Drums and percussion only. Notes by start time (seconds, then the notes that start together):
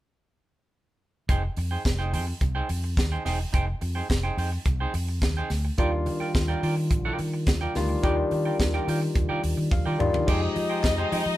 1.29 kick, closed hi-hat
1.57 open hi-hat
1.85 kick, snare, closed hi-hat
2.14 open hi-hat
2.41 kick, closed hi-hat
2.69 open hi-hat
2.97 kick, snare, closed hi-hat
3.26 snare, open hi-hat
3.54 kick, closed hi-hat
3.81 open hi-hat
4.10 kick, snare, closed hi-hat
4.38 open hi-hat
4.66 kick, closed hi-hat
4.94 open hi-hat
5.22 kick, snare, closed hi-hat
5.50 snare, open hi-hat
5.78 kick, closed hi-hat
6.06 open hi-hat
6.35 kick, snare, closed hi-hat
6.63 open hi-hat
6.91 kick, closed hi-hat
7.19 open hi-hat
7.47 kick, snare, closed hi-hat
7.75 snare, open hi-hat
8.04 kick, closed hi-hat
8.31 open hi-hat
8.60 kick, snare, closed hi-hat
8.88 open hi-hat
9.15 kick, closed hi-hat
9.44 open hi-hat
9.71 kick, high tom
10.00 mid tom
10.14 floor tom
10.28 kick, crash
10.56 open hi-hat
10.83 kick, snare, clap, closed hi-hat
11.12 open hi-hat